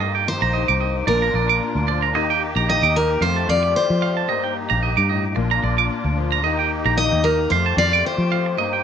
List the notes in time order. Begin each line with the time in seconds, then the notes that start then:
Already playing: G4
0.00 G2 A#3 D#4 D#5, muted nylon-string guitar stroke
0.15 G5
0.28 C5
0.42 A#1 A#5
0.53 D#4 D#5
0.68 C2 D6
0.80 D#3 D#5
1.07 A#1 A#2 A#3 D4 F4 A#4 D5
1.22 A#5
1.34 A#1 D5
1.49 D6
1.63 D4
1.75 D2
1.88 F3 D5
2.02 A#5
2.15 D#2 D#3 D#4 G4 D#5
2.30 G5
2.56 A#1 A#5
2.69 G4 D#5
2.82 D#2 D6
2.96 A#3 A#4 D#5
3.21 F2 A3 F4 C5 F5
3.36 A5
3.49 F2 D5 F5
3.63 muted clean electric guitar stroke
3.76 C4 C5
3.90 F3
4.02 F3 F5
4.17 A5
4.28 G2 A#3 D#4 D#5
4.44 G5
4.70 A#1 A#5
4.83 G2 D#5
4.97 G2 D6
5.09 A2 D#5
5.35 A#1 A#2 A#3 D4 F4, muted clean electric guitar stroke
5.51 A#5
5.63 A#1 D5
5.78 D6
5.90 D4
6.04 D2
6.17 F3
6.32 A#5
6.43 D#2 D#3 A#3 D#4 G4 D#5
6.59 G5
6.85 A#1 A#5
6.97 G4 D#5
7.12 D#2
7.24 A#3 A#4 D#5
7.50 F2 A3 F4 C5 F5
7.66 A5
7.77 F2 D5 F5
7.93 D6
8.05 C4 C5
8.18 F3
8.32 F3 F5
8.46 muted clean electric guitar stroke
8.55 G2 A#3 D#4 D#5
8.73 G5